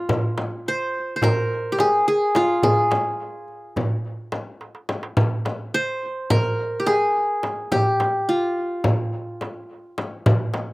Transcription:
0.00 0.97 F4 medium
0.09 darbuka dum medium
0.09 frame drum medium
0.38 darbuka tek medium
0.38 frame drum medium
0.66 1.16 C5 medium
0.66 darbuka ka soft
1.16 2.22 C5 medium
1.22 2.37 A#4 medium
1.22 darbuka dum medium
1.22 frame drum medium
1.51 darbuka ka soft
1.72 1.86 G4 medium
1.79 2.07 G#4 medium
1.79 darbuka tek medium
1.79 frame drum medium
2.08 2.63 G#4 medium
2.35 3.71 F4 medium
2.35 darbuka tek medium
2.35 frame drum medium
2.63 3.85 G#4 medium
2.63 darbuka dum medium
2.63 frame drum medium
2.91 darbuka tek medium
2.91 frame drum medium
3.20 darbuka ka soft
3.48 darbuka ka soft
3.76 darbuka dum medium
3.76 frame drum medium
4.05 darbuka ka soft
4.32 darbuka tek medium
4.32 frame drum medium
4.61 darbuka tek soft
4.75 darbuka ka medium
4.89 darbuka tek medium
4.89 frame drum medium
5.03 darbuka ka medium
5.17 darbuka dum medium
5.17 frame drum medium
5.45 darbuka tek medium
5.45 frame drum medium
5.74 6.80 C5 medium
6.30 7.44 A#4 medium
6.30 frame drum medium
6.30 darbuka dum medium
6.59 darbuka ka soft
6.80 6.92 G4 medium
6.86 7.78 G#4 medium
6.86 darbuka tek medium
6.86 frame drum medium
7.43 darbuka tek medium
7.43 frame drum medium
7.72 8.97 G4 medium
7.72 frame drum medium
7.72 darbuka dum medium
8.00 darbuka tek medium
8.00 frame drum medium
8.29 9.94 F4 medium
8.29 darbuka ka soft
8.84 frame drum medium
8.84 darbuka dum medium
9.13 darbuka ka soft
9.41 darbuka tek medium
9.41 frame drum medium
9.98 darbuka tek medium
9.98 frame drum medium
10.26 darbuka dum medium
10.26 frame drum loud
10.54 darbuka tek medium
10.54 frame drum medium

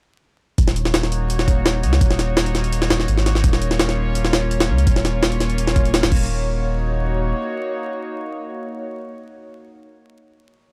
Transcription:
0.58 1.85 D#1 loud
0.58 1.81 A#3 loud
0.58 1.81 D#4 loud
0.58 1.81 F#4 medium
0.58 1.81 C#5 loud
0.58 kick loud
0.58 closed hi-hat medium
0.68 snare soft
0.76 closed hi-hat medium
0.85 snare soft
0.94 snare loud
0.94 closed hi-hat medium
1.03 snare soft
1.12 closed hi-hat medium
1.30 closed hi-hat medium
1.39 snare soft
1.48 kick medium
1.48 closed hi-hat medium
1.66 snare loud
1.66 closed hi-hat medium
1.83 2.00 C#2 medium
1.83 closed hi-hat medium
1.93 snare medium
2.01 2.89 D#1 loud
2.01 3.24 A#3 loud
2.01 3.24 D#4 medium
2.01 3.24 F#4 medium
2.01 3.24 C#5 loud
2.01 kick loud
2.01 closed hi-hat medium
2.11 snare soft
2.19 snare soft
2.19 closed hi-hat medium
2.37 snare loud
2.37 closed hi-hat medium
2.46 closed hi-hat soft
2.55 snare soft
2.55 closed hi-hat medium
2.64 closed hi-hat soft
2.72 closed hi-hat medium
2.82 snare medium
2.90 3.07 D#1 medium
2.90 snare loud
2.90 closed hi-hat medium
3.00 snare soft
3.08 3.43 G#1 medium
3.08 closed hi-hat medium
3.17 snare soft
3.26 snare soft
3.26 closed hi-hat medium
3.35 snare soft
3.44 4.71 D#1 loud
3.44 4.67 A#3 loud
3.44 4.67 C#4 medium
3.44 4.67 F4 loud
3.44 4.67 C#5 loud
3.44 kick loud
3.44 closed hi-hat medium
3.53 snare soft
3.62 closed hi-hat medium
3.71 snare soft
3.80 snare loud
3.80 closed hi-hat medium
3.89 snare soft
4.15 closed hi-hat medium
4.25 snare medium
4.33 snare loud
4.33 closed hi-hat medium
4.51 closed hi-hat medium
4.60 snare loud
4.60 closed hi-hat medium
4.69 4.85 C#2 medium
4.78 closed hi-hat medium
4.87 5.75 D#1 loud
4.87 6.10 A#3 loud
4.87 6.10 C#4 loud
4.87 6.10 F4 loud
4.87 6.10 C#5 loud
4.87 kick loud
4.87 closed hi-hat medium
4.96 snare soft
5.05 snare soft
5.05 closed hi-hat medium
5.23 snare loud
5.23 closed hi-hat medium
5.32 closed hi-hat soft
5.40 snare soft
5.40 closed hi-hat medium
5.50 closed hi-hat soft
5.58 closed hi-hat medium
5.68 snare medium
5.76 6.02 D#1 loud
5.76 kick medium
5.76 closed hi-hat medium
5.86 closed hi-hat soft
5.94 snare loud
5.94 closed hi-hat medium
6.03 6.11 D#1 loud
6.03 snare loud
6.03 closed hi-hat medium
6.12 7.33 D#1 loud
6.12 9.77 A#3 loud
6.12 9.77 D#4 medium
6.12 9.77 F#4 medium
6.12 9.77 C#5 loud
6.12 kick loud
6.12 crash medium

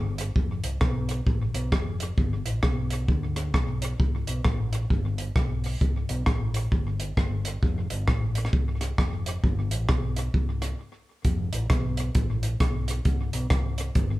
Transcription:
0.00 0.29 G1 medium
0.18 closed hi-hat medium
0.36 0.59 F1 medium
0.36 kick loud
0.63 0.78 C2 medium
0.63 closed hi-hat medium
0.81 1.20 B1 medium
0.81 kick loud
0.81 cross-stick loud
1.09 closed hi-hat medium
1.27 1.50 A1 medium
1.27 kick loud
1.54 1.69 B1 medium
1.54 closed hi-hat medium
1.72 2.11 F1 medium
1.72 kick loud
1.72 cross-stick loud
2.00 closed hi-hat medium
2.18 2.42 G1 medium
2.18 kick loud
2.45 2.60 A1 medium
2.45 closed hi-hat medium
2.63 3.09 B1 medium
2.63 kick loud
2.63 cross-stick loud
2.90 closed hi-hat medium
3.08 3.54 D2 loud
3.08 kick loud
3.36 cross-stick medium
3.36 closed hi-hat medium
3.54 3.93 B1 medium
3.54 kick loud
3.54 cross-stick loud
3.82 closed hi-hat medium
4.00 4.23 C2 medium
4.00 kick loud
4.27 4.43 B1 medium
4.27 closed hi-hat medium
4.45 4.84 A1 medium
4.45 kick loud
4.45 cross-stick loud
4.73 closed hi-hat medium
4.90 5.29 G1 medium
4.90 kick loud
5.18 closed hi-hat medium
5.36 5.74 B1 medium
5.36 kick loud
5.36 cross-stick loud
5.64 open hi-hat soft
5.81 6.05 C2 medium
5.81 kick loud
5.81 hi-hat pedal medium
6.09 6.24 B1 loud
6.09 closed hi-hat medium
6.26 6.65 A1 loud
6.26 kick loud
6.26 cross-stick loud
6.54 closed hi-hat medium
6.72 7.10 G1 medium
6.72 kick loud
7.00 closed hi-hat medium
7.17 7.56 G1 medium
7.17 kick loud
7.17 cross-stick loud
7.45 closed hi-hat medium
7.63 7.86 F1 loud
7.63 kick loud
7.90 8.06 G1 medium
7.90 closed hi-hat medium
8.08 8.47 A1 medium
8.08 kick loud
8.08 cross-stick loud
8.35 closed hi-hat medium
8.45 cross-stick medium
8.53 8.92 C2 medium
8.53 kick loud
8.81 cross-stick medium
8.81 closed hi-hat medium
8.98 9.37 F1 medium
8.98 kick loud
8.98 cross-stick loud
9.26 closed hi-hat medium
9.44 9.71 G1 medium
9.44 kick loud
9.71 9.86 A1 medium
9.71 closed hi-hat medium
9.89 10.28 B1 medium
9.89 kick loud
9.89 cross-stick loud
10.16 closed hi-hat medium
10.34 10.73 C2 loud
10.34 kick loud
10.62 cross-stick medium
10.62 closed hi-hat medium
11.25 11.48 F1 loud
11.25 kick medium
11.25 closed hi-hat medium
11.52 11.67 A1 loud
11.52 closed hi-hat medium
11.70 12.09 B1 loud
11.70 kick loud
11.70 cross-stick loud
11.70 closed hi-hat medium
11.97 closed hi-hat medium
12.15 12.54 A1 loud
12.15 kick loud
12.15 closed hi-hat medium
12.43 closed hi-hat medium
12.60 12.99 B1 medium
12.60 kick loud
12.60 cross-stick loud
12.60 closed hi-hat medium
12.88 closed hi-hat medium
13.05 13.29 C2 loud
13.05 kick loud
13.05 closed hi-hat medium
13.33 13.48 B1 medium
13.33 closed hi-hat medium
13.50 13.89 C2 medium
13.50 kick loud
13.50 cross-stick loud
13.50 closed hi-hat medium
13.78 closed hi-hat medium
13.95 14.20 G1 medium
13.95 kick loud
13.95 closed hi-hat medium

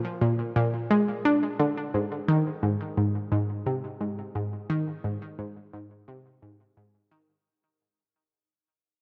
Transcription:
0.21 0.42 A#2 medium
0.56 0.87 A#2 medium
0.91 1.11 G#3 medium
1.25 1.56 D4 medium
1.59 1.80 D3 medium
1.94 2.15 G#2 medium
2.28 2.49 D#3 medium
2.63 2.75 G#2 medium
2.97 3.18 G#2 medium
3.32 3.63 G#2 medium
3.66 3.97 C3 medium
4.01 4.22 G#2 medium
4.35 4.56 G#2 medium
4.70 4.91 D#3 loud
5.04 5.17 G#2 medium
5.39 5.60 G#2 medium
5.73 6.04 G#2 medium
6.08 6.39 C3 medium
6.42 6.63 G#2 medium
6.77 6.98 G#2 medium
7.11 7.32 D#3 medium

